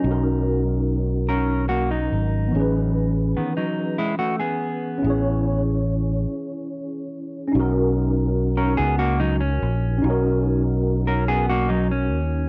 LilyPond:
<<
  \new Staff \with { instrumentName = "Tine electric piano" } { \time 6/8 \key b \major \tempo 4. = 48 <cis' dis' fis' ais'>2. | <e b cis' gis' b'>2. | <cis' e' gis' cis''>2. | <cis' dis' fis' ais'>2. |
<cis' dis' fis' ais'>2. | }
  \new Staff \with { instrumentName = "Clean electric guitar" } { \time 6/8 \key b \major <fis dis'>8. r8. <cis' ais'>8 <ais fis'>16 <fis dis'>8.~ | <fis dis'>8. r16 <dis b>16 <fis dis'>8 <gis e'>16 <a fis'>16 <b gis'>8.~ | <b gis'>8. r2 r16 | r4 r16 <cis' ais'>16 <b gis'>16 <ais fis'>16 <fis dis'>16 cis'8.~ |
cis'8. r8 <cis' ais'>16 <b gis'>16 <ais fis'>16 <fis dis'>16 cis'8. | }
  \new Staff \with { instrumentName = "Fingered electric bass" } { \clef bass \time 6/8 \key b \major b,,2~ b,,8 gis,,8 | a,,4 r2 | a,,4. r4. | b,,4. cis,4 ais,,8 |
b,,2~ b,,8 dis,8 | }
>>